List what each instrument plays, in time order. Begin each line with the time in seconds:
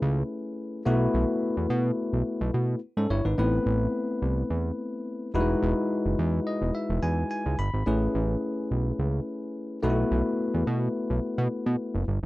Already playing: tine electric piano A3 C#4 E4 G#4 B4
0.02 analog synth bass C#2
0.85 analog synth bass B1, tine electric piano A3 B3 E4 F#4 B4
1.14 analog synth bass B1
1.57 analog synth bass E2
1.70 analog synth bass B2
2.13 analog synth bass B1
2.41 analog synth bass B1
2.54 analog synth bass B2
2.97 analog synth bass G#2, tine electric piano C#4 A4
3.10 analog synth bass G1, tine electric piano E4 C#5
3.25 analog synth bass G#1, tine electric piano D#4 B4
3.38 analog synth bass A1, tine electric piano A3 B3 C4 E4 B4
3.66 analog synth bass A1
4.22 analog synth bass C2
4.50 analog synth bass E2
5.34 analog synth bass E1, tine electric piano G3 D#4 E4 F#4 B4
5.40 tine electric piano G#3
5.62 analog synth bass E1
6.05 analog synth bass F#1
6.19 analog synth bass E2
6.47 tine electric piano D#5
6.61 analog synth bass E1
6.75 tine electric piano E5
6.90 analog synth bass E1
7.03 analog synth bass E2, tine electric piano G#5
7.31 tine electric piano G#5
7.46 analog synth bass C#2
7.59 analog synth bass G1, tine electric piano B5
7.74 analog synth bass G#1
7.86 analog synth bass A1, tine electric piano A3 C#4 E4 G#4 B4
8.15 analog synth bass A1
8.71 analog synth bass B1
8.99 analog synth bass C#2
9.82 analog synth bass B1, tine electric piano A3 B3 D#4 F#4 B4
9.90 tine electric piano E4
10.11 analog synth bass B1
10.54 analog synth bass E2
10.67 analog synth bass B2
11.10 analog synth bass B1
11.38 analog synth bass B2
11.66 analog synth bass B2
11.94 analog synth bass F#1
12.08 analog synth bass G1